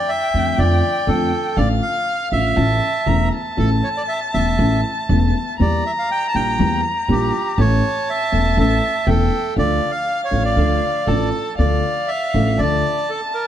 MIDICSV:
0, 0, Header, 1, 5, 480
1, 0, Start_track
1, 0, Key_signature, -1, "minor"
1, 0, Tempo, 498339
1, 1521, Time_signature, 4, 2, 24, 8
1, 9697, Tempo, 504626
1, 12933, End_track
2, 0, Start_track
2, 0, Title_t, "Violin"
2, 0, Program_c, 0, 40
2, 0, Note_on_c, 0, 79, 86
2, 1514, Note_on_c, 0, 77, 80
2, 1529, Note_off_c, 0, 79, 0
2, 2472, Note_on_c, 0, 81, 80
2, 2487, Note_off_c, 0, 77, 0
2, 2958, Note_on_c, 0, 82, 68
2, 2972, Note_off_c, 0, 81, 0
2, 3205, Note_on_c, 0, 81, 80
2, 3219, Note_off_c, 0, 82, 0
2, 5391, Note_off_c, 0, 81, 0
2, 5397, Note_on_c, 0, 82, 80
2, 7304, Note_on_c, 0, 81, 80
2, 7318, Note_off_c, 0, 82, 0
2, 8735, Note_on_c, 0, 79, 66
2, 8750, Note_off_c, 0, 81, 0
2, 9215, Note_on_c, 0, 77, 70
2, 9229, Note_off_c, 0, 79, 0
2, 10665, Note_on_c, 0, 81, 62
2, 10680, Note_off_c, 0, 77, 0
2, 11142, Note_off_c, 0, 81, 0
2, 11147, Note_on_c, 0, 77, 72
2, 12067, Note_off_c, 0, 77, 0
2, 12105, Note_on_c, 0, 81, 76
2, 12933, Note_off_c, 0, 81, 0
2, 12933, End_track
3, 0, Start_track
3, 0, Title_t, "Bandoneon"
3, 0, Program_c, 1, 23
3, 0, Note_on_c, 1, 74, 83
3, 85, Note_on_c, 1, 76, 81
3, 101, Note_off_c, 1, 74, 0
3, 563, Note_on_c, 1, 74, 77
3, 579, Note_off_c, 1, 76, 0
3, 1041, Note_on_c, 1, 69, 69
3, 1056, Note_off_c, 1, 74, 0
3, 1514, Note_on_c, 1, 74, 73
3, 1533, Note_off_c, 1, 69, 0
3, 1623, Note_off_c, 1, 74, 0
3, 1754, Note_on_c, 1, 77, 77
3, 2203, Note_off_c, 1, 77, 0
3, 2238, Note_on_c, 1, 76, 75
3, 3167, Note_off_c, 1, 76, 0
3, 3457, Note_on_c, 1, 69, 62
3, 3566, Note_off_c, 1, 69, 0
3, 3695, Note_on_c, 1, 73, 61
3, 3750, Note_off_c, 1, 73, 0
3, 3821, Note_on_c, 1, 74, 69
3, 3875, Note_off_c, 1, 74, 0
3, 3936, Note_on_c, 1, 76, 72
3, 4046, Note_off_c, 1, 76, 0
3, 4178, Note_on_c, 1, 76, 68
3, 4632, Note_off_c, 1, 76, 0
3, 5407, Note_on_c, 1, 74, 69
3, 5627, Note_off_c, 1, 74, 0
3, 5646, Note_on_c, 1, 76, 67
3, 5698, Note_off_c, 1, 76, 0
3, 5764, Note_on_c, 1, 77, 67
3, 5873, Note_off_c, 1, 77, 0
3, 5888, Note_on_c, 1, 79, 84
3, 6043, Note_off_c, 1, 79, 0
3, 6054, Note_on_c, 1, 81, 53
3, 6119, Note_off_c, 1, 81, 0
3, 6119, Note_on_c, 1, 79, 68
3, 6561, Note_off_c, 1, 79, 0
3, 6849, Note_on_c, 1, 67, 68
3, 7320, Note_on_c, 1, 73, 75
3, 7329, Note_off_c, 1, 67, 0
3, 7799, Note_on_c, 1, 76, 75
3, 7804, Note_off_c, 1, 73, 0
3, 8267, Note_off_c, 1, 76, 0
3, 8282, Note_on_c, 1, 76, 79
3, 8755, Note_on_c, 1, 69, 75
3, 8761, Note_off_c, 1, 76, 0
3, 9191, Note_off_c, 1, 69, 0
3, 9232, Note_on_c, 1, 74, 84
3, 9549, Note_on_c, 1, 77, 78
3, 9552, Note_off_c, 1, 74, 0
3, 9839, Note_off_c, 1, 77, 0
3, 9867, Note_on_c, 1, 73, 60
3, 10047, Note_off_c, 1, 73, 0
3, 10057, Note_on_c, 1, 74, 71
3, 10651, Note_on_c, 1, 69, 56
3, 10865, Note_off_c, 1, 74, 0
3, 11105, Note_off_c, 1, 69, 0
3, 11135, Note_on_c, 1, 74, 67
3, 11609, Note_on_c, 1, 76, 71
3, 11634, Note_off_c, 1, 74, 0
3, 12090, Note_on_c, 1, 74, 76
3, 12110, Note_off_c, 1, 76, 0
3, 12577, Note_on_c, 1, 69, 58
3, 12588, Note_off_c, 1, 74, 0
3, 12685, Note_off_c, 1, 69, 0
3, 12812, Note_on_c, 1, 70, 67
3, 12920, Note_off_c, 1, 70, 0
3, 12933, End_track
4, 0, Start_track
4, 0, Title_t, "Upright piano"
4, 0, Program_c, 2, 0
4, 326, Note_on_c, 2, 53, 45
4, 328, Note_on_c, 2, 50, 41
4, 329, Note_on_c, 2, 41, 48
4, 332, Note_on_c, 2, 57, 36
4, 332, Note_on_c, 2, 65, 44
4, 530, Note_off_c, 2, 41, 0
4, 530, Note_off_c, 2, 50, 0
4, 531, Note_off_c, 2, 53, 0
4, 532, Note_off_c, 2, 57, 0
4, 532, Note_off_c, 2, 65, 0
4, 553, Note_on_c, 2, 50, 57
4, 554, Note_on_c, 2, 57, 57
4, 555, Note_on_c, 2, 53, 65
4, 556, Note_on_c, 2, 41, 71
4, 558, Note_on_c, 2, 65, 68
4, 761, Note_off_c, 2, 50, 0
4, 762, Note_off_c, 2, 57, 0
4, 763, Note_off_c, 2, 41, 0
4, 763, Note_off_c, 2, 53, 0
4, 764, Note_off_c, 2, 65, 0
4, 1025, Note_on_c, 2, 50, 57
4, 1029, Note_on_c, 2, 53, 74
4, 1030, Note_on_c, 2, 41, 75
4, 1030, Note_on_c, 2, 57, 58
4, 1031, Note_on_c, 2, 65, 60
4, 1235, Note_off_c, 2, 50, 0
4, 1238, Note_off_c, 2, 41, 0
4, 1238, Note_off_c, 2, 53, 0
4, 1238, Note_off_c, 2, 57, 0
4, 1238, Note_off_c, 2, 65, 0
4, 1509, Note_on_c, 2, 53, 48
4, 1510, Note_on_c, 2, 50, 58
4, 1512, Note_on_c, 2, 45, 63
4, 1513, Note_on_c, 2, 33, 64
4, 1514, Note_on_c, 2, 57, 50
4, 1518, Note_on_c, 2, 65, 62
4, 1715, Note_off_c, 2, 50, 0
4, 1715, Note_off_c, 2, 53, 0
4, 1717, Note_off_c, 2, 33, 0
4, 1717, Note_off_c, 2, 45, 0
4, 1718, Note_off_c, 2, 57, 0
4, 1720, Note_off_c, 2, 65, 0
4, 2231, Note_on_c, 2, 50, 37
4, 2233, Note_on_c, 2, 33, 48
4, 2234, Note_on_c, 2, 45, 49
4, 2234, Note_on_c, 2, 57, 34
4, 2236, Note_on_c, 2, 53, 36
4, 2236, Note_on_c, 2, 65, 45
4, 2437, Note_off_c, 2, 50, 0
4, 2438, Note_off_c, 2, 33, 0
4, 2438, Note_off_c, 2, 45, 0
4, 2438, Note_off_c, 2, 57, 0
4, 2439, Note_off_c, 2, 53, 0
4, 2439, Note_off_c, 2, 65, 0
4, 2466, Note_on_c, 2, 49, 54
4, 2466, Note_on_c, 2, 52, 51
4, 2467, Note_on_c, 2, 45, 70
4, 2467, Note_on_c, 2, 57, 47
4, 2468, Note_on_c, 2, 33, 68
4, 2472, Note_on_c, 2, 64, 61
4, 2674, Note_off_c, 2, 52, 0
4, 2675, Note_off_c, 2, 33, 0
4, 2675, Note_off_c, 2, 45, 0
4, 2675, Note_off_c, 2, 49, 0
4, 2675, Note_off_c, 2, 57, 0
4, 2677, Note_off_c, 2, 64, 0
4, 2949, Note_on_c, 2, 49, 61
4, 2949, Note_on_c, 2, 52, 53
4, 2952, Note_on_c, 2, 28, 66
4, 2952, Note_on_c, 2, 40, 66
4, 2952, Note_on_c, 2, 57, 53
4, 2953, Note_on_c, 2, 64, 64
4, 3161, Note_off_c, 2, 49, 0
4, 3161, Note_off_c, 2, 52, 0
4, 3162, Note_off_c, 2, 28, 0
4, 3162, Note_off_c, 2, 40, 0
4, 3162, Note_off_c, 2, 57, 0
4, 3163, Note_off_c, 2, 64, 0
4, 3437, Note_on_c, 2, 49, 50
4, 3439, Note_on_c, 2, 45, 68
4, 3439, Note_on_c, 2, 52, 49
4, 3440, Note_on_c, 2, 33, 65
4, 3442, Note_on_c, 2, 57, 50
4, 3442, Note_on_c, 2, 64, 59
4, 3650, Note_off_c, 2, 49, 0
4, 3651, Note_off_c, 2, 33, 0
4, 3651, Note_off_c, 2, 45, 0
4, 3651, Note_off_c, 2, 52, 0
4, 3652, Note_off_c, 2, 57, 0
4, 3653, Note_off_c, 2, 64, 0
4, 4178, Note_on_c, 2, 49, 38
4, 4179, Note_on_c, 2, 52, 34
4, 4180, Note_on_c, 2, 28, 44
4, 4182, Note_on_c, 2, 40, 44
4, 4184, Note_on_c, 2, 57, 35
4, 4185, Note_on_c, 2, 64, 42
4, 4385, Note_off_c, 2, 49, 0
4, 4386, Note_off_c, 2, 28, 0
4, 4386, Note_off_c, 2, 52, 0
4, 4387, Note_off_c, 2, 40, 0
4, 4388, Note_off_c, 2, 57, 0
4, 4388, Note_off_c, 2, 64, 0
4, 4418, Note_on_c, 2, 49, 57
4, 4419, Note_on_c, 2, 45, 65
4, 4421, Note_on_c, 2, 57, 53
4, 4423, Note_on_c, 2, 33, 65
4, 4423, Note_on_c, 2, 52, 49
4, 4425, Note_on_c, 2, 64, 56
4, 4626, Note_off_c, 2, 49, 0
4, 4627, Note_off_c, 2, 45, 0
4, 4628, Note_off_c, 2, 33, 0
4, 4628, Note_off_c, 2, 57, 0
4, 4629, Note_off_c, 2, 52, 0
4, 4630, Note_off_c, 2, 64, 0
4, 4906, Note_on_c, 2, 49, 60
4, 4907, Note_on_c, 2, 52, 51
4, 4908, Note_on_c, 2, 28, 71
4, 4908, Note_on_c, 2, 57, 54
4, 4910, Note_on_c, 2, 40, 66
4, 4910, Note_on_c, 2, 64, 60
4, 5114, Note_off_c, 2, 49, 0
4, 5115, Note_off_c, 2, 28, 0
4, 5115, Note_off_c, 2, 52, 0
4, 5115, Note_off_c, 2, 57, 0
4, 5116, Note_off_c, 2, 40, 0
4, 5116, Note_off_c, 2, 64, 0
4, 5385, Note_on_c, 2, 52, 67
4, 5388, Note_on_c, 2, 55, 50
4, 5392, Note_on_c, 2, 67, 67
4, 5393, Note_on_c, 2, 40, 67
4, 5393, Note_on_c, 2, 58, 48
4, 5596, Note_off_c, 2, 55, 0
4, 5597, Note_off_c, 2, 52, 0
4, 5598, Note_off_c, 2, 40, 0
4, 5598, Note_off_c, 2, 58, 0
4, 5598, Note_off_c, 2, 67, 0
4, 6104, Note_on_c, 2, 52, 38
4, 6106, Note_on_c, 2, 34, 48
4, 6106, Note_on_c, 2, 46, 44
4, 6106, Note_on_c, 2, 55, 35
4, 6108, Note_on_c, 2, 58, 38
4, 6110, Note_on_c, 2, 67, 42
4, 6311, Note_off_c, 2, 52, 0
4, 6312, Note_off_c, 2, 34, 0
4, 6312, Note_off_c, 2, 46, 0
4, 6312, Note_off_c, 2, 55, 0
4, 6313, Note_off_c, 2, 58, 0
4, 6314, Note_off_c, 2, 67, 0
4, 6349, Note_on_c, 2, 52, 67
4, 6349, Note_on_c, 2, 55, 52
4, 6351, Note_on_c, 2, 58, 50
4, 6354, Note_on_c, 2, 40, 70
4, 6357, Note_on_c, 2, 67, 61
4, 6552, Note_off_c, 2, 55, 0
4, 6553, Note_off_c, 2, 58, 0
4, 6554, Note_off_c, 2, 52, 0
4, 6555, Note_off_c, 2, 40, 0
4, 6557, Note_off_c, 2, 67, 0
4, 6820, Note_on_c, 2, 52, 61
4, 6823, Note_on_c, 2, 58, 52
4, 6824, Note_on_c, 2, 55, 57
4, 6825, Note_on_c, 2, 67, 61
4, 6826, Note_on_c, 2, 34, 70
4, 6826, Note_on_c, 2, 46, 66
4, 7025, Note_off_c, 2, 52, 0
4, 7026, Note_off_c, 2, 58, 0
4, 7027, Note_off_c, 2, 55, 0
4, 7027, Note_off_c, 2, 67, 0
4, 7028, Note_off_c, 2, 34, 0
4, 7028, Note_off_c, 2, 46, 0
4, 7300, Note_on_c, 2, 33, 73
4, 7300, Note_on_c, 2, 57, 54
4, 7301, Note_on_c, 2, 52, 57
4, 7302, Note_on_c, 2, 45, 68
4, 7303, Note_on_c, 2, 61, 53
4, 7306, Note_on_c, 2, 69, 61
4, 7503, Note_off_c, 2, 33, 0
4, 7503, Note_off_c, 2, 57, 0
4, 7504, Note_off_c, 2, 45, 0
4, 7504, Note_off_c, 2, 52, 0
4, 7504, Note_off_c, 2, 61, 0
4, 7506, Note_off_c, 2, 69, 0
4, 8014, Note_on_c, 2, 52, 42
4, 8016, Note_on_c, 2, 40, 47
4, 8017, Note_on_c, 2, 57, 36
4, 8017, Note_on_c, 2, 61, 36
4, 8019, Note_on_c, 2, 28, 50
4, 8021, Note_on_c, 2, 69, 43
4, 8218, Note_off_c, 2, 52, 0
4, 8219, Note_off_c, 2, 40, 0
4, 8219, Note_off_c, 2, 57, 0
4, 8220, Note_off_c, 2, 28, 0
4, 8220, Note_off_c, 2, 61, 0
4, 8221, Note_off_c, 2, 69, 0
4, 8260, Note_on_c, 2, 52, 61
4, 8260, Note_on_c, 2, 61, 56
4, 8261, Note_on_c, 2, 45, 70
4, 8262, Note_on_c, 2, 57, 56
4, 8263, Note_on_c, 2, 33, 74
4, 8266, Note_on_c, 2, 69, 66
4, 8459, Note_off_c, 2, 52, 0
4, 8459, Note_off_c, 2, 61, 0
4, 8460, Note_off_c, 2, 45, 0
4, 8461, Note_off_c, 2, 33, 0
4, 8461, Note_off_c, 2, 57, 0
4, 8462, Note_off_c, 2, 69, 0
4, 8733, Note_on_c, 2, 57, 51
4, 8734, Note_on_c, 2, 52, 62
4, 8735, Note_on_c, 2, 28, 73
4, 8735, Note_on_c, 2, 40, 77
4, 8736, Note_on_c, 2, 61, 55
4, 8738, Note_on_c, 2, 69, 66
4, 8935, Note_off_c, 2, 57, 0
4, 8936, Note_off_c, 2, 28, 0
4, 8936, Note_off_c, 2, 52, 0
4, 8937, Note_off_c, 2, 40, 0
4, 8937, Note_off_c, 2, 61, 0
4, 8938, Note_off_c, 2, 69, 0
4, 9210, Note_on_c, 2, 53, 55
4, 9212, Note_on_c, 2, 50, 67
4, 9213, Note_on_c, 2, 57, 52
4, 9215, Note_on_c, 2, 38, 66
4, 9215, Note_on_c, 2, 62, 51
4, 9215, Note_on_c, 2, 69, 61
4, 9413, Note_off_c, 2, 53, 0
4, 9414, Note_off_c, 2, 50, 0
4, 9415, Note_off_c, 2, 57, 0
4, 9416, Note_off_c, 2, 38, 0
4, 9416, Note_off_c, 2, 62, 0
4, 9416, Note_off_c, 2, 69, 0
4, 9926, Note_on_c, 2, 53, 39
4, 9927, Note_on_c, 2, 62, 34
4, 9929, Note_on_c, 2, 45, 47
4, 9929, Note_on_c, 2, 57, 34
4, 9930, Note_on_c, 2, 33, 47
4, 9932, Note_on_c, 2, 69, 42
4, 10131, Note_off_c, 2, 53, 0
4, 10132, Note_off_c, 2, 57, 0
4, 10132, Note_off_c, 2, 62, 0
4, 10133, Note_off_c, 2, 33, 0
4, 10133, Note_off_c, 2, 45, 0
4, 10134, Note_off_c, 2, 69, 0
4, 10165, Note_on_c, 2, 53, 59
4, 10168, Note_on_c, 2, 50, 65
4, 10168, Note_on_c, 2, 57, 56
4, 10168, Note_on_c, 2, 62, 47
4, 10170, Note_on_c, 2, 69, 61
4, 10171, Note_on_c, 2, 38, 72
4, 10372, Note_off_c, 2, 53, 0
4, 10373, Note_off_c, 2, 57, 0
4, 10374, Note_off_c, 2, 50, 0
4, 10374, Note_off_c, 2, 62, 0
4, 10375, Note_off_c, 2, 38, 0
4, 10375, Note_off_c, 2, 69, 0
4, 10651, Note_on_c, 2, 53, 59
4, 10652, Note_on_c, 2, 45, 61
4, 10653, Note_on_c, 2, 57, 53
4, 10655, Note_on_c, 2, 62, 53
4, 10656, Note_on_c, 2, 33, 66
4, 10658, Note_on_c, 2, 69, 62
4, 10859, Note_off_c, 2, 45, 0
4, 10859, Note_off_c, 2, 53, 0
4, 10860, Note_off_c, 2, 57, 0
4, 10861, Note_off_c, 2, 33, 0
4, 10861, Note_off_c, 2, 62, 0
4, 10862, Note_off_c, 2, 69, 0
4, 11136, Note_on_c, 2, 53, 52
4, 11139, Note_on_c, 2, 38, 65
4, 11140, Note_on_c, 2, 50, 64
4, 11140, Note_on_c, 2, 57, 47
4, 11143, Note_on_c, 2, 62, 45
4, 11144, Note_on_c, 2, 69, 58
4, 11341, Note_off_c, 2, 53, 0
4, 11343, Note_off_c, 2, 38, 0
4, 11343, Note_off_c, 2, 50, 0
4, 11343, Note_off_c, 2, 57, 0
4, 11345, Note_off_c, 2, 62, 0
4, 11345, Note_off_c, 2, 69, 0
4, 11861, Note_on_c, 2, 57, 49
4, 11862, Note_on_c, 2, 33, 69
4, 11862, Note_on_c, 2, 53, 55
4, 11863, Note_on_c, 2, 62, 54
4, 11864, Note_on_c, 2, 45, 69
4, 11867, Note_on_c, 2, 69, 63
4, 12063, Note_off_c, 2, 53, 0
4, 12063, Note_off_c, 2, 57, 0
4, 12064, Note_off_c, 2, 33, 0
4, 12064, Note_off_c, 2, 45, 0
4, 12064, Note_off_c, 2, 62, 0
4, 12066, Note_off_c, 2, 69, 0
4, 12099, Note_on_c, 2, 53, 54
4, 12099, Note_on_c, 2, 62, 54
4, 12100, Note_on_c, 2, 57, 51
4, 12101, Note_on_c, 2, 38, 67
4, 12102, Note_on_c, 2, 50, 68
4, 12105, Note_on_c, 2, 69, 56
4, 12301, Note_off_c, 2, 53, 0
4, 12301, Note_off_c, 2, 57, 0
4, 12301, Note_off_c, 2, 62, 0
4, 12302, Note_off_c, 2, 38, 0
4, 12302, Note_off_c, 2, 50, 0
4, 12304, Note_off_c, 2, 69, 0
4, 12933, End_track
5, 0, Start_track
5, 0, Title_t, "Upright bass"
5, 0, Program_c, 3, 32
5, 326, Note_on_c, 3, 41, 45
5, 529, Note_off_c, 3, 41, 0
5, 563, Note_on_c, 3, 41, 79
5, 766, Note_off_c, 3, 41, 0
5, 1033, Note_on_c, 3, 41, 74
5, 1239, Note_off_c, 3, 41, 0
5, 1511, Note_on_c, 3, 33, 78
5, 1716, Note_off_c, 3, 33, 0
5, 2233, Note_on_c, 3, 33, 44
5, 2438, Note_off_c, 3, 33, 0
5, 2473, Note_on_c, 3, 33, 72
5, 2678, Note_off_c, 3, 33, 0
5, 2951, Note_on_c, 3, 28, 73
5, 3162, Note_off_c, 3, 28, 0
5, 3446, Note_on_c, 3, 33, 73
5, 3654, Note_off_c, 3, 33, 0
5, 4183, Note_on_c, 3, 28, 46
5, 4388, Note_off_c, 3, 28, 0
5, 4418, Note_on_c, 3, 33, 81
5, 4626, Note_off_c, 3, 33, 0
5, 4905, Note_on_c, 3, 28, 79
5, 5114, Note_off_c, 3, 28, 0
5, 5393, Note_on_c, 3, 40, 73
5, 5598, Note_off_c, 3, 40, 0
5, 6116, Note_on_c, 3, 34, 49
5, 6317, Note_off_c, 3, 34, 0
5, 6350, Note_on_c, 3, 40, 81
5, 6553, Note_off_c, 3, 40, 0
5, 6825, Note_on_c, 3, 34, 78
5, 7028, Note_off_c, 3, 34, 0
5, 7299, Note_on_c, 3, 33, 81
5, 7503, Note_off_c, 3, 33, 0
5, 8023, Note_on_c, 3, 28, 49
5, 8222, Note_off_c, 3, 28, 0
5, 8257, Note_on_c, 3, 33, 78
5, 8458, Note_off_c, 3, 33, 0
5, 8734, Note_on_c, 3, 28, 79
5, 8936, Note_off_c, 3, 28, 0
5, 9213, Note_on_c, 3, 38, 74
5, 9415, Note_off_c, 3, 38, 0
5, 9934, Note_on_c, 3, 33, 45
5, 10135, Note_off_c, 3, 33, 0
5, 10169, Note_on_c, 3, 38, 74
5, 10374, Note_off_c, 3, 38, 0
5, 10653, Note_on_c, 3, 33, 75
5, 10859, Note_off_c, 3, 33, 0
5, 11139, Note_on_c, 3, 38, 68
5, 11343, Note_off_c, 3, 38, 0
5, 11860, Note_on_c, 3, 33, 72
5, 12062, Note_off_c, 3, 33, 0
5, 12094, Note_on_c, 3, 38, 72
5, 12299, Note_off_c, 3, 38, 0
5, 12933, End_track
0, 0, End_of_file